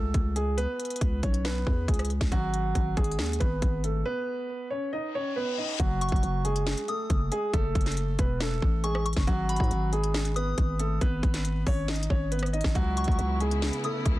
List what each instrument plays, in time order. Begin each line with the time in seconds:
Already playing: 808-style bass C#2, grand piano A3 A4
0.14 808-style bass C#2, kick, closed hi-hat
0.36 grand piano G#3 G#4, closed hi-hat
0.58 grand piano B3 B4, closed hi-hat
0.80 closed hi-hat
0.85 closed hi-hat
0.90 closed hi-hat
0.96 closed hi-hat
1.01 808-style bass C#2, kick, closed hi-hat
1.23 808-style bass B1, grand piano C#4 C#5, kick, closed hi-hat, open hi-hat
1.34 closed hi-hat
1.45 grand piano B3 B4, snare, closed hi-hat
1.67 808-style bass E2, kick
1.88 808-style bass C#2, grand piano G#3 G#4, kick, closed hi-hat
1.94 closed hi-hat
1.99 cross-stick, closed hi-hat
2.05 closed hi-hat
2.10 closed hi-hat
2.21 808-style bass C#2, kick, snare, closed hi-hat
2.32 808-style bass G#1, grand piano F#3 F#4, kick, closed hi-hat
2.54 closed hi-hat
2.75 808-style bass G#1, kick, closed hi-hat
2.97 808-style bass G#1, grand piano G#3 G#4, kick, closed hi-hat
3.04 closed hi-hat
3.12 closed hi-hat
3.19 808-style bass D#2, snare, closed hi-hat
3.26 closed hi-hat
3.33 closed hi-hat
3.40 808-style bass G#1, grand piano B3 B4, kick, closed hi-hat
3.62 808-style bass G#1, kick, closed hi-hat
3.84 grand piano A3 A4, closed hi-hat
4.06 grand piano B3 B4
4.70 grand piano C#4 C#5
4.93 grand piano D#4 D#5, reverse cymbal
5.15 grand piano C#4 C#5
5.36 grand piano B3 B4
5.58 grand piano D#4 D#5
5.80 808-style bass F#1, grand piano F#3 F#4, kick, closed hi-hat
6.01 synth bell C#6, closed hi-hat
6.09 808-style bass F#1, kick, closed hi-hat
6.16 closed hi-hat
6.23 808-style bass F#1, closed hi-hat
6.45 grand piano G#3 G#4, closed hi-hat
6.56 closed hi-hat
6.67 snare, closed hi-hat
6.77 closed hi-hat
6.88 grand piano A3 A4, synth bell D#6, closed hi-hat
7.10 808-style bass F#1, kick, closed hi-hat
7.32 grand piano G#3 G#4, closed hi-hat
7.54 808-style bass F#1, grand piano A3 A4, kick, closed hi-hat
7.75 808-style bass F#1, kick, closed hi-hat
7.81 closed hi-hat
7.86 snare, closed hi-hat
7.92 closed hi-hat
7.97 closed hi-hat
8.19 808-style bass E1, grand piano B3 B4, kick, closed hi-hat
8.41 grand piano A3 A4, snare, closed hi-hat
8.62 808-style bass A1, kick
8.84 grand piano G#3 G#4, synth bell C#6, closed hi-hat
8.95 cross-stick
9.05 synth bell C#6, closed hi-hat, open hi-hat
9.13 808-style bass F#1, kick, snare, closed hi-hat
9.20 closed hi-hat
9.27 808-style bass G#1, grand piano F#3 F#4, kick, closed hi-hat
9.49 synth bell B5, closed hi-hat
9.56 808-style bass G#2, kick, closed hi-hat
9.64 closed hi-hat
9.71 808-style bass G#1, closed hi-hat
9.92 grand piano G#3 G#4, closed hi-hat
10.04 closed hi-hat
10.14 snare, closed hi-hat
10.25 closed hi-hat
10.36 grand piano B3 B4, synth bell D#6, closed hi-hat
10.58 808-style bass G#1, kick, closed hi-hat
10.80 grand piano A3 A4, closed hi-hat
11.01 808-style bass G#1, grand piano B3 B4, kick, closed hi-hat
11.23 808-style bass G#1, kick, closed hi-hat
11.34 snare, closed hi-hat
11.45 closed hi-hat
11.67 808-style bass G#1, grand piano C#4 C#5, kick, open hi-hat
11.88 grand piano D#4 D#5, snare, closed hi-hat
11.96 closed hi-hat
12.03 closed hi-hat
12.10 808-style bass G#1, grand piano C#4 C#5, kick
12.32 grand piano B3 B4, closed hi-hat
12.39 cross-stick, closed hi-hat
12.46 closed hi-hat
12.53 grand piano D#4 D#5, closed hi-hat
12.61 808-style bass G#1, kick, snare, closed hi-hat
12.68 closed hi-hat
12.75 808-style bass C#2, string section C#3 B3 E4, grand piano F#3 F#4, kick, closed hi-hat
12.97 synth bell C#6, closed hi-hat
13.04 808-style bass C#2, kick, closed hi-hat
13.12 closed hi-hat
13.19 808-style bass C#2, closed hi-hat
13.40 grand piano G#3 G#4, closed hi-hat
13.51 closed hi-hat
13.62 snare, closed hi-hat
13.73 closed hi-hat
13.84 grand piano A3 A4, synth bell D#6, closed hi-hat
14.06 808-style bass C#2, kick, closed hi-hat